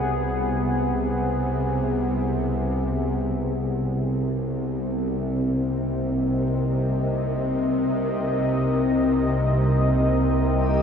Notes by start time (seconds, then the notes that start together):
Already playing: C2 C3 B3 G#4 F#5
3.36 C2 C3 C4
4.35 A#4
5.08 D#5
10.56 G3 G4